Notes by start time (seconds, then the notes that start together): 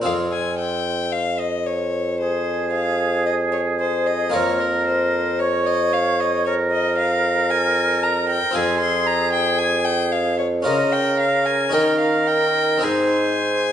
0.02 F2 C4 F4 G#4 F5
0.06 F2
0.32 G#5
0.59 G5
1.13 F5
1.40 D#5
1.66 C#5
2.21 G#4 C5
2.73 F5
3.26 D#5
3.52 C#5
3.80 C5
4.07 D#5
4.30 A#3 F4 A#4
4.34 F2 A#4 C#5
4.60 A#4
4.87 C5
5.39 C#5
5.66 D#5
5.93 F5
6.20 D#5
6.45 A#4 C#5
6.71 D#5
6.98 F5
7.50 G#5
8.03 A#5
8.29 G5
8.51 C4 F4 G#4
8.55 F2 G#4 G#5
8.80 C6
9.06 A#5
9.33 G5
9.58 G#5
9.85 G5
10.12 F5
10.38 C#5
10.62 C#4 F4 A#4 D#5
10.66 C#3 A#4
10.92 G5
11.20 F5
11.45 G#5
11.69 C#4 D#4 A#4 G5
11.74 D#3 A#4
12.00 F5
12.27 G5
12.78 G#3 C4 D#4
12.82 G#2 G#4 C5 G#5